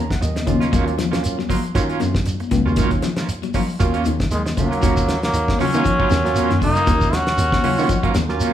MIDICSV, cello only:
0, 0, Header, 1, 2, 480
1, 0, Start_track
1, 0, Key_signature, -6, "minor"
1, 0, Tempo, 511945
1, 681, Time_signature, 4, 2, 24, 8
1, 7999, End_track
2, 0, Start_track
2, 0, Title_t, "Cello"
2, 0, Program_c, 0, 42
2, 207, Note_on_c, 0, 39, 81
2, 316, Note_off_c, 0, 39, 0
2, 442, Note_on_c, 0, 39, 86
2, 554, Note_off_c, 0, 39, 0
2, 684, Note_on_c, 0, 39, 96
2, 1490, Note_off_c, 0, 39, 0
2, 1642, Note_on_c, 0, 51, 80
2, 1844, Note_off_c, 0, 51, 0
2, 1885, Note_on_c, 0, 42, 89
2, 2086, Note_off_c, 0, 42, 0
2, 2360, Note_on_c, 0, 37, 86
2, 2473, Note_off_c, 0, 37, 0
2, 2491, Note_on_c, 0, 39, 85
2, 2583, Note_off_c, 0, 39, 0
2, 2599, Note_on_c, 0, 51, 88
2, 3408, Note_off_c, 0, 51, 0
2, 3564, Note_on_c, 0, 39, 88
2, 3676, Note_off_c, 0, 39, 0
2, 3808, Note_on_c, 0, 39, 76
2, 3918, Note_off_c, 0, 39, 0
2, 4049, Note_on_c, 0, 39, 72
2, 4159, Note_off_c, 0, 39, 0
2, 4287, Note_on_c, 0, 39, 73
2, 4397, Note_off_c, 0, 39, 0
2, 4526, Note_on_c, 0, 39, 91
2, 4928, Note_off_c, 0, 39, 0
2, 5007, Note_on_c, 0, 39, 78
2, 5319, Note_off_c, 0, 39, 0
2, 5382, Note_on_c, 0, 51, 83
2, 5581, Note_off_c, 0, 51, 0
2, 5730, Note_on_c, 0, 39, 88
2, 5928, Note_off_c, 0, 39, 0
2, 6095, Note_on_c, 0, 42, 92
2, 6297, Note_off_c, 0, 42, 0
2, 6441, Note_on_c, 0, 39, 106
2, 6844, Note_off_c, 0, 39, 0
2, 6923, Note_on_c, 0, 39, 86
2, 7235, Note_off_c, 0, 39, 0
2, 7297, Note_on_c, 0, 51, 89
2, 7497, Note_off_c, 0, 51, 0
2, 7643, Note_on_c, 0, 39, 87
2, 7843, Note_off_c, 0, 39, 0
2, 7999, End_track
0, 0, End_of_file